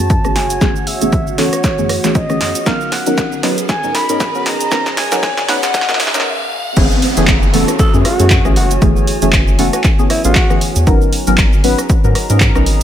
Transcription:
Already playing: F#4 C#5 F#5 A5, riser
0.00 F#2 E3 A3 B3 C#4 G#4
0.10 kick, closed hi-hat, shaker
0.25 A1 E3 A3 B3 C#4 G#4, cross-stick, shaker
0.36 F#1 G#5, snare, open hi-hat
0.50 closed hi-hat, shaker
0.61 F#1 E3 A3 B3 C#4 G#4, kick, snare, closed hi-hat, shaker
0.76 shaker
0.87 E5, open hi-hat
1.01 F#1 E3 A3 B3 C#4 G#4, closed hi-hat, shaker
1.13 F#1, kick, closed hi-hat, shaker
1.27 shaker
1.38 E3 A3 B3 C#4 A4 C#5, snare, open hi-hat
1.53 cross-stick, closed hi-hat, shaker
1.64 kick, snare, closed hi-hat, shaker
1.78 F#2 E3 A3 B3 C#4 G#4, shaker
1.89 cross-stick, open hi-hat
2.04 A1 E3 A3 B3 C#4 G#4, snare, closed hi-hat, shaker
2.15 D#5, kick, closed hi-hat, shaker
2.30 E3 A3 B3 C#4 G#4, cross-stick, shaker
2.41 F#2, snare, open hi-hat
2.55 closed hi-hat, shaker
2.66 G#1 F#3 B3 C#4 D#4 G#4 A#4 F5, kick, snare, closed hi-hat, shaker
2.81 shaker
2.92 F#5, snare, open hi-hat
3.06 G#1 F#3 B3 C#4 D#4 A#4, closed hi-hat, shaker
3.18 G#1, kick, snare, closed hi-hat, shaker
3.32 shaker
3.43 F#3 B3 C#4 D#4 B4, snare, open hi-hat
3.56 D#5, closed hi-hat, shaker
3.69 G#5, kick, snare, closed hi-hat, shaker
3.83 G#2 F#3 B3 C#4 D#4 A#4, shaker
3.95 B5, snare, open hi-hat
4.09 G#2 F#3 B3 C#4 D#4 A#4 G#5, closed hi-hat, shaker
4.20 kick, snare, closed hi-hat, shaker
4.35 B1 F#3 B3 C#4 D#4 A#4, shaker
4.46 G#1 A#5, snare, open hi-hat
4.60 closed hi-hat, shaker
4.71 G#1 F#3 B3 C#4 D#4 A#4, kick, snare, closed hi-hat, shaker
4.86 snare, shaker
4.97 G#5, snare, open hi-hat
5.12 G#1 F#3 B3 C#4 D#4 A#4, snare, closed hi-hat, shaker
5.23 G#1, kick, snare, closed hi-hat, shaker
5.37 snare, shaker
5.48 F#3 B3 C#4 D#4 B4 F#5, snare, open hi-hat
5.63 snare, closed hi-hat, shaker
5.74 kick, snare, closed hi-hat, shaker
5.81 snare
5.89 F#3 B3 C#4 D#4 A#4, snare, shaker
5.94 snare
6.00 snare, open hi-hat
6.07 snare
6.14 B1 F#3 B3 C#4 D#4 A#4, snare, closed hi-hat, shaker
6.20 snare
6.77 F#1 E3 A3 B3 C#4 F#4 G#4, kick, closed hi-hat, crash, downlifter, shaker
6.91 shaker
6.98 C#5
7.02 open hi-hat
7.17 F#1 E3 A3 B3 C#4 G#4, closed hi-hat, shaker
7.27 F#1, kick, clap, closed hi-hat, shaker
7.43 shaker
7.54 E3 A3 B3 C#4 A4, open hi-hat
7.68 cross-stick, closed hi-hat, shaker
7.79 A4, kick, closed hi-hat, shaker
7.94 F#2 E3 A3 B3 C#4 G#4, shaker
8.02 F#4 G#5, cross-stick, open hi-hat
8.19 F#2 E3 A3 B3 C#4 G#4, closed hi-hat, shaker
8.30 kick, clap, closed hi-hat, shaker
8.45 A1 E3 A3 B3 C#4 G#4, cross-stick, shaker
8.56 F#1 F#4, open hi-hat
8.71 closed hi-hat, shaker
8.82 F#1 E3 A3 B3 C#4 G#4, kick, closed hi-hat, shaker
8.96 shaker
9.07 open hi-hat
9.22 F#1 E3 A3 B3 C#4 G#4, closed hi-hat, shaker
9.33 F#1, kick, clap, closed hi-hat, shaker
9.48 shaker
9.59 E3 A3 B3 C#4 F#4 A4, open hi-hat
9.73 F#4, cross-stick, closed hi-hat, shaker
9.84 kick, clap, closed hi-hat, shaker
9.99 E3 A3 B3 C#4 G#4, shaker
10.10 E4, cross-stick, open hi-hat
10.25 A1 E3 A3 B3 C#4 F#4 G#4, closed hi-hat, shaker
10.35 kick, clap, closed hi-hat, shaker
10.50 E3 A3 B3 C#4 G#4, cross-stick, shaker
10.61 open hi-hat
10.76 E2, closed hi-hat, shaker
10.87 G#1 F#3 B3 C#4 D#4 G#4 A#4, kick, closed hi-hat, shaker
11.02 shaker
11.13 open hi-hat
11.17 A#5
11.27 G#1 F#3 B3 C#4 D#4 A#4, closed hi-hat, shaker
11.38 G#1, kick, clap, closed hi-hat, shaker
11.53 shaker
11.64 F#3 B3 C#4 D#4 B4, open hi-hat
11.72 D#5
11.78 cross-stick, closed hi-hat, shaker
11.90 kick, closed hi-hat, shaker
12.04 G#2 F#3 B3 C#4 D#4 A#4, shaker
12.15 cross-stick, open hi-hat
12.30 G#2 F#3 B3 C#4 D#4 A#4, closed hi-hat, shaker
12.40 kick, clap, closed hi-hat, shaker
12.55 B1 F#3 B3 C#4 D#4 A#4, cross-stick, shaker
12.66 G#1, open hi-hat

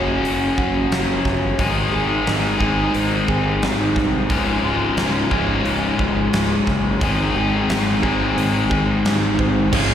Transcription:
Already playing: F#1 F#2 C#3 F#3 C#4 F#4
0.23 F#1 F#3, open hi-hat
0.58 F#1 F#4, kick
0.91 F#1 C#4, snare, open hi-hat
1.25 G1 F#3, kick, snare
1.59 G#1 G#2 D#3 G#3 C4 D#4 G#4, kick, open hi-hat
1.92 G#1 G#4
2.27 G#1 D#4, snare, open hi-hat
2.59 G#1 G#2 D#3 G#3 C4 D#4 G#4, kick
2.94 G#1 C4, open hi-hat
3.28 G#1 G#4, kick
3.62 G#1 D#4, snare, open hi-hat
3.96 C2 C4, kick, snare
4.29 C#1 C#2 G#2 C#3 G#3 F4, kick, open hi-hat
4.63 C#1 F4
4.97 C#1 G#3, snare, open hi-hat
5.31 C#1 C#2 G#2 C#3 G#3 F4, kick
5.65 C#1 C#3, open hi-hat
5.99 C#1 F4, kick
6.33 C#1 G#3, snare, open hi-hat
6.67 F#1 C#3, kick, snare
7.00 G#1 G#2 D#3 G#3 C4 D#4 G#4, kick, open hi-hat
7.35 G#1 G#4
7.68 G#1 D#4, snare, open hi-hat
8.02 G#1 G#2 D#3 G#3 C4 D#4 G#4, kick
8.36 G#1 C4, open hi-hat
8.69 G#1 G#4, kick
9.04 G#1 D#4, snare, open hi-hat
9.39 G#1 C4, kick
9.73 C#1 C#2 G#2 C#3 G#3 F4 G#4 C#5 F5 C#6, kick, crash

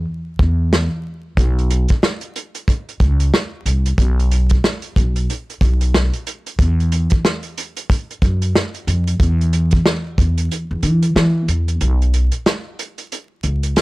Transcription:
0.39 E2, kick
0.73 cross-stick, snare
1.37 B1, kick, closed hi-hat
1.58 closed hi-hat
1.70 closed hi-hat
1.88 kick, closed hi-hat
2.03 cross-stick, snare
2.21 closed hi-hat
2.36 closed hi-hat
2.55 closed hi-hat
2.68 kick, closed hi-hat
2.89 closed hi-hat
3.00 C#2, kick, closed hi-hat
3.20 closed hi-hat
3.34 cross-stick, snare
3.66 C2, closed hi-hat
3.86 closed hi-hat
3.98 B1, kick, closed hi-hat
4.19 closed hi-hat
4.31 closed hi-hat
4.49 kick, closed hi-hat
4.64 cross-stick, snare
4.82 closed hi-hat
4.96 B1, kick, closed hi-hat
5.16 closed hi-hat
5.30 closed hi-hat
5.50 closed hi-hat
5.61 B1, kick, closed hi-hat
5.81 closed hi-hat
5.94 cross-stick, snare
6.13 closed hi-hat
6.27 closed hi-hat
6.46 closed hi-hat
6.59 E2, kick, closed hi-hat
6.80 closed hi-hat
6.92 closed hi-hat
7.10 kick, closed hi-hat
7.25 cross-stick, snare
7.43 closed hi-hat
7.58 closed hi-hat
7.77 closed hi-hat
7.90 kick, closed hi-hat
8.10 closed hi-hat
8.22 F#2, kick, closed hi-hat
8.42 closed hi-hat
8.55 cross-stick, snare
8.74 closed hi-hat
8.87 F2, closed hi-hat
9.07 closed hi-hat
9.20 E2, kick, closed hi-hat
9.41 closed hi-hat
9.53 closed hi-hat
9.71 kick, closed hi-hat
9.86 cross-stick, snare
10.18 E2, kick, closed hi-hat
10.37 closed hi-hat
10.51 closed hi-hat
10.71 E2
10.83 E3, closed hi-hat
11.02 closed hi-hat
11.16 E3, cross-stick, snare
11.48 E2, closed hi-hat
11.68 closed hi-hat
11.81 B1, closed hi-hat
12.02 closed hi-hat
12.14 closed hi-hat
12.31 closed hi-hat
12.46 cross-stick, snare, closed hi-hat
12.79 closed hi-hat
12.98 closed hi-hat
13.12 closed hi-hat
13.43 C#2, closed hi-hat
13.63 closed hi-hat
13.76 cross-stick, snare, closed hi-hat

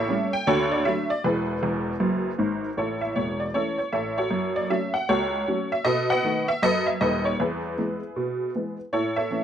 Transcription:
Already playing: A1 A2 G4 A4 C#5 E5
0.09 G3 A3 C#4
0.33 G5
0.47 D2 D3 F#4 A4 C#5
0.72 D5
0.85 F#3 A3 D4 E5
1.10 D5
1.24 E1 E2 E4 G#4 B4
1.63 E1 E2
2.00 F#1 F#2
2.39 G#1 G#2
2.77 A1 A2 E4 A4 C#5
3.01 E5
3.16 E1 E2 C#5
3.40 D5
3.54 E3 A3 C#4 E4 A4 C#5
3.78 C#5
3.93 A1 A2 A4 C#5 E5
4.18 F#4 A4 C#5
4.31 F#2
4.56 D5
4.70 F#3 A3 C#4 E5
4.94 F#5
5.09 C#2 F#4 A4 C#5
5.48 F#3 A3 C#4
5.72 E5
5.85 B2 A4 B4 D#5
6.10 B4 D#5 F#5
6.25 D#3 A3 B3
6.48 E5
6.63 F#2 A4 B4 D#5
6.86 E5
7.01 D#1 D#2 A4 B4 D#5
7.25 C#5
7.40 E2 E4 G#4 B4
7.78 E3 G#3 B3
8.16 B2
8.55 E3 G#3 B3
8.93 A2 E4 A4 C#5
9.16 A4 C#5 E5
9.30 E3 A3 C#4

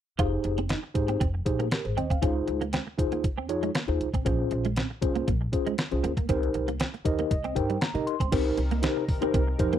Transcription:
0.18 F1 D#4 F4 G4 G#4 C5, kick, closed hi-hat
0.44 F1, muted clean electric guitar stroke, closed hi-hat
0.58 C4, closed hi-hat
0.69 D#4, snare, closed hi-hat
0.83 muted clean electric guitar stroke
0.94 G#1 D#4 G4 G#4 C5, kick, closed hi-hat
1.08 C4, closed hi-hat
1.20 F1 C4, kick, closed hi-hat
1.34 muted clean electric guitar stroke
1.46 A#1 D#4 G4 G#4 C5, kick, closed hi-hat
1.59 A#3, closed hi-hat
1.71 G4 A#4, muted clean electric guitar stroke, snare, closed hi-hat
1.85 G#1 G#4 C5, closed hi-hat
1.97 D#2 C4 C5 D#5, closed hi-hat
2.10 D2 C4 F5, kick, closed hi-hat
2.22 C#2 C#4 D#4 F4 G#4 C5, kick, closed hi-hat
2.47 C#2, muted clean electric guitar stroke, closed hi-hat
2.61 A#3, closed hi-hat
2.73 C4, snare, closed hi-hat
2.87 muted clean electric guitar stroke
2.98 D#2 D#4 F4 G#4 C5, kick, closed hi-hat
3.12 A#3, closed hi-hat
3.24 C#2, kick, closed hi-hat
3.38 C4
3.49 F2 D#4 F4 G#4 C#5, muted clean electric guitar stroke, closed hi-hat
3.63 G#3, closed hi-hat
3.75 A#3, snare, closed hi-hat
3.88 D#2 D#4 F4 G#4 C5, muted clean electric guitar stroke, closed hi-hat
4.00 C2, closed hi-hat
4.14 B1 C4, kick, closed hi-hat
4.25 A#1 A#3 C#4 F4 G#4 C5, kick, closed hi-hat
4.51 A#1, muted clean electric guitar stroke, closed hi-hat
4.65 G#3, closed hi-hat
4.76 C4, snare, closed hi-hat
4.90 muted clean electric guitar stroke
5.01 C2 C#4 F4 G#4 C5, kick, closed hi-hat
5.15 A#3, closed hi-hat
5.28 A#1 A#3, kick, closed hi-hat
5.41 muted clean electric guitar stroke
5.53 C#4 F4 G#4 C5, kick, closed hi-hat
5.66 G#3, closed hi-hat
5.78 muted clean electric guitar stroke, snare, closed hi-hat
5.91 C2 C#4 F4 G#4 C5, closed hi-hat
6.04 D2 A#3, closed hi-hat
6.17 C#2 A#3, kick, closed hi-hat
6.29 C2 C4 D#4 G4 A#4 C5, kick, closed hi-hat
6.43 closed hi-hat
6.54 C2, muted clean electric guitar stroke, closed hi-hat
6.68 A#3, closed hi-hat
6.80 C4, snare, closed hi-hat
6.94 muted clean electric guitar stroke, closed hi-hat
7.05 D#2 D#4 G4 A#4 C5 D#5, kick, closed hi-hat
7.19 A#3, closed hi-hat
7.31 C2 D#5, kick, closed hi-hat
7.44 C4, closed hi-hat
7.55 G2 D#4 G4 A#4 C5 G5, muted clean electric guitar stroke, kick, closed hi-hat
7.70 G3, closed hi-hat
7.81 A#3 A#5, snare, closed hi-hat
7.94 C3 D#4 G4 A#4 D#5, muted clean electric guitar stroke, closed hi-hat
8.07 C6, closed hi-hat
8.20 C#2 C4, kick, closed hi-hat
8.32 C2 C3 C4 D#4 G4 A#4 C5, kick, closed hi-hat, crash
8.57 C2, muted clean electric guitar stroke, closed hi-hat
8.71 A#3, closed hi-hat
8.82 D#4 G4 A#4 C5, snare, closed hi-hat
8.96 muted clean electric guitar stroke
9.08 D#2, kick, open hi-hat
9.21 C4 D#4 G4 A#4 C5, closed hi-hat
9.34 C2 C4, kick, closed hi-hat
9.47 muted clean electric guitar stroke
9.59 F2 D#4 G4 A#4 C5, kick, closed hi-hat
9.73 A#3, closed hi-hat

